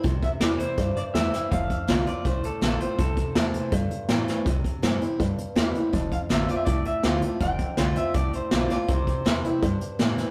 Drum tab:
HH |xxxxxxxx|xxxxxxxx|xxxxxxxx|xxxxxxxx|
SD |--o---oo|--o---o-|--o---oo|--o---o-|
BD |oo--o---|oo--o---|oo--o---|oo--o---|

HH |xxxxxxxx|xxxxxxxx|xxxxxxxx|
SD |--o---o-|--o---oo|--o---oo|
BD |oo--o---|oo--o---|oo--o---|